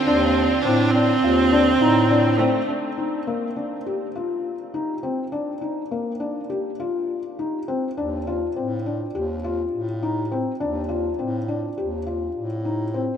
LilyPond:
<<
  \new Staff \with { instrumentName = "Felt piano" } { \time 9/8 \key ees \lydian \tempo 4. = 68 d'4 c'8 d'8 f'8 d'8 ees'8 d'8 c'8 | d'8 ees'8 bes8 d'8 g'8 f'4 ees'8 c'8 | d'8 ees'8 bes8 d'8 g'8 f'4 ees'8 c'8 | d'8 f'8 c'8 d'8 g'8 f'4 ees'8 c'8 |
d'8 f'8 c'8 d'8 g'8 f'4 ees'8 c'8 | }
  \new Staff \with { instrumentName = "String section" } { \time 9/8 \key ees \lydian <d c' f'>1~ <d c' f'>8 | r1 r8 | r1 r8 | r1 r8 |
r1 r8 | }
  \new Staff \with { instrumentName = "Viola" } { \time 9/8 \key ees \lydian c'4 d'8 c'2~ c'8 a8 | r1 r8 | r1 r8 | r1 r8 |
r1 r8 | }
  \new Staff \with { instrumentName = "Bass clarinet" } { \clef bass \time 9/8 \key ees \lydian ees,4 a,4 ees,4 a,4. | r1 r8 | r1 r8 | ees,4 a,4 ees,4 a,4. |
ees,4 a,4 ees,4 a,4. | }
>>